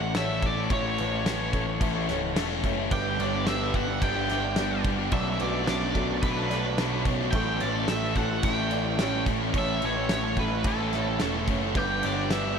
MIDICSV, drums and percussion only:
0, 0, Header, 1, 2, 480
1, 0, Start_track
1, 0, Tempo, 552995
1, 616, Time_signature, 4, 2, 24, 8
1, 10927, End_track
2, 0, Start_track
2, 0, Title_t, "Drums"
2, 128, Note_on_c, 9, 38, 127
2, 128, Note_on_c, 9, 49, 82
2, 215, Note_off_c, 9, 38, 0
2, 215, Note_off_c, 9, 49, 0
2, 369, Note_on_c, 9, 36, 107
2, 369, Note_on_c, 9, 49, 67
2, 456, Note_off_c, 9, 36, 0
2, 456, Note_off_c, 9, 49, 0
2, 610, Note_on_c, 9, 36, 124
2, 611, Note_on_c, 9, 49, 81
2, 697, Note_off_c, 9, 36, 0
2, 698, Note_off_c, 9, 49, 0
2, 853, Note_on_c, 9, 49, 69
2, 940, Note_off_c, 9, 49, 0
2, 1095, Note_on_c, 9, 38, 119
2, 1095, Note_on_c, 9, 49, 90
2, 1182, Note_off_c, 9, 38, 0
2, 1182, Note_off_c, 9, 49, 0
2, 1330, Note_on_c, 9, 36, 84
2, 1332, Note_on_c, 9, 49, 64
2, 1417, Note_off_c, 9, 36, 0
2, 1419, Note_off_c, 9, 49, 0
2, 1570, Note_on_c, 9, 36, 119
2, 1574, Note_on_c, 9, 49, 97
2, 1657, Note_off_c, 9, 36, 0
2, 1660, Note_off_c, 9, 49, 0
2, 1812, Note_on_c, 9, 38, 35
2, 1812, Note_on_c, 9, 49, 70
2, 1899, Note_off_c, 9, 38, 0
2, 1899, Note_off_c, 9, 49, 0
2, 2052, Note_on_c, 9, 38, 120
2, 2052, Note_on_c, 9, 49, 98
2, 2139, Note_off_c, 9, 38, 0
2, 2139, Note_off_c, 9, 49, 0
2, 2289, Note_on_c, 9, 36, 97
2, 2292, Note_on_c, 9, 49, 77
2, 2376, Note_off_c, 9, 36, 0
2, 2379, Note_off_c, 9, 49, 0
2, 2529, Note_on_c, 9, 36, 122
2, 2531, Note_on_c, 9, 49, 95
2, 2616, Note_off_c, 9, 36, 0
2, 2618, Note_off_c, 9, 49, 0
2, 2774, Note_on_c, 9, 49, 69
2, 2861, Note_off_c, 9, 49, 0
2, 3009, Note_on_c, 9, 38, 120
2, 3009, Note_on_c, 9, 49, 95
2, 3096, Note_off_c, 9, 38, 0
2, 3096, Note_off_c, 9, 49, 0
2, 3246, Note_on_c, 9, 49, 64
2, 3247, Note_on_c, 9, 36, 84
2, 3333, Note_off_c, 9, 49, 0
2, 3334, Note_off_c, 9, 36, 0
2, 3488, Note_on_c, 9, 36, 120
2, 3492, Note_on_c, 9, 49, 94
2, 3575, Note_off_c, 9, 36, 0
2, 3578, Note_off_c, 9, 49, 0
2, 3727, Note_on_c, 9, 38, 36
2, 3727, Note_on_c, 9, 49, 75
2, 3814, Note_off_c, 9, 38, 0
2, 3814, Note_off_c, 9, 49, 0
2, 3960, Note_on_c, 9, 38, 120
2, 3960, Note_on_c, 9, 49, 89
2, 4046, Note_off_c, 9, 38, 0
2, 4046, Note_off_c, 9, 49, 0
2, 4204, Note_on_c, 9, 49, 71
2, 4206, Note_on_c, 9, 36, 101
2, 4291, Note_off_c, 9, 49, 0
2, 4292, Note_off_c, 9, 36, 0
2, 4440, Note_on_c, 9, 49, 88
2, 4444, Note_on_c, 9, 36, 110
2, 4527, Note_off_c, 9, 49, 0
2, 4531, Note_off_c, 9, 36, 0
2, 4684, Note_on_c, 9, 49, 69
2, 4770, Note_off_c, 9, 49, 0
2, 4926, Note_on_c, 9, 38, 114
2, 4926, Note_on_c, 9, 49, 91
2, 5013, Note_off_c, 9, 38, 0
2, 5013, Note_off_c, 9, 49, 0
2, 5165, Note_on_c, 9, 49, 61
2, 5166, Note_on_c, 9, 36, 83
2, 5252, Note_off_c, 9, 49, 0
2, 5253, Note_off_c, 9, 36, 0
2, 5406, Note_on_c, 9, 36, 118
2, 5406, Note_on_c, 9, 49, 87
2, 5492, Note_off_c, 9, 36, 0
2, 5492, Note_off_c, 9, 49, 0
2, 5649, Note_on_c, 9, 38, 36
2, 5649, Note_on_c, 9, 49, 71
2, 5736, Note_off_c, 9, 38, 0
2, 5736, Note_off_c, 9, 49, 0
2, 5887, Note_on_c, 9, 38, 127
2, 5887, Note_on_c, 9, 49, 90
2, 5973, Note_off_c, 9, 38, 0
2, 5973, Note_off_c, 9, 49, 0
2, 6121, Note_on_c, 9, 49, 81
2, 6123, Note_on_c, 9, 36, 103
2, 6208, Note_off_c, 9, 49, 0
2, 6210, Note_off_c, 9, 36, 0
2, 6357, Note_on_c, 9, 49, 95
2, 6362, Note_on_c, 9, 36, 125
2, 6444, Note_off_c, 9, 49, 0
2, 6449, Note_off_c, 9, 36, 0
2, 6599, Note_on_c, 9, 49, 79
2, 6686, Note_off_c, 9, 49, 0
2, 6839, Note_on_c, 9, 38, 117
2, 6839, Note_on_c, 9, 49, 94
2, 6926, Note_off_c, 9, 38, 0
2, 6926, Note_off_c, 9, 49, 0
2, 7078, Note_on_c, 9, 49, 69
2, 7080, Note_on_c, 9, 36, 82
2, 7165, Note_off_c, 9, 49, 0
2, 7167, Note_off_c, 9, 36, 0
2, 7317, Note_on_c, 9, 49, 93
2, 7320, Note_on_c, 9, 36, 119
2, 7404, Note_off_c, 9, 49, 0
2, 7407, Note_off_c, 9, 36, 0
2, 7557, Note_on_c, 9, 49, 76
2, 7644, Note_off_c, 9, 49, 0
2, 7802, Note_on_c, 9, 38, 113
2, 7802, Note_on_c, 9, 49, 94
2, 7889, Note_off_c, 9, 38, 0
2, 7889, Note_off_c, 9, 49, 0
2, 8041, Note_on_c, 9, 36, 105
2, 8044, Note_on_c, 9, 49, 76
2, 8128, Note_off_c, 9, 36, 0
2, 8131, Note_off_c, 9, 49, 0
2, 8280, Note_on_c, 9, 36, 115
2, 8282, Note_on_c, 9, 49, 89
2, 8367, Note_off_c, 9, 36, 0
2, 8369, Note_off_c, 9, 49, 0
2, 8522, Note_on_c, 9, 49, 71
2, 8609, Note_off_c, 9, 49, 0
2, 8761, Note_on_c, 9, 38, 124
2, 8761, Note_on_c, 9, 49, 85
2, 8848, Note_off_c, 9, 38, 0
2, 8848, Note_off_c, 9, 49, 0
2, 8998, Note_on_c, 9, 49, 57
2, 9000, Note_on_c, 9, 36, 83
2, 9085, Note_off_c, 9, 49, 0
2, 9087, Note_off_c, 9, 36, 0
2, 9236, Note_on_c, 9, 49, 85
2, 9240, Note_on_c, 9, 36, 123
2, 9323, Note_off_c, 9, 49, 0
2, 9327, Note_off_c, 9, 36, 0
2, 9484, Note_on_c, 9, 38, 35
2, 9484, Note_on_c, 9, 49, 66
2, 9571, Note_off_c, 9, 38, 0
2, 9571, Note_off_c, 9, 49, 0
2, 9718, Note_on_c, 9, 38, 113
2, 9718, Note_on_c, 9, 49, 84
2, 9805, Note_off_c, 9, 38, 0
2, 9805, Note_off_c, 9, 49, 0
2, 9962, Note_on_c, 9, 36, 97
2, 9962, Note_on_c, 9, 49, 73
2, 10048, Note_off_c, 9, 36, 0
2, 10049, Note_off_c, 9, 49, 0
2, 10199, Note_on_c, 9, 49, 87
2, 10201, Note_on_c, 9, 36, 120
2, 10285, Note_off_c, 9, 49, 0
2, 10287, Note_off_c, 9, 36, 0
2, 10440, Note_on_c, 9, 49, 78
2, 10527, Note_off_c, 9, 49, 0
2, 10681, Note_on_c, 9, 38, 113
2, 10681, Note_on_c, 9, 49, 92
2, 10768, Note_off_c, 9, 38, 0
2, 10768, Note_off_c, 9, 49, 0
2, 10927, End_track
0, 0, End_of_file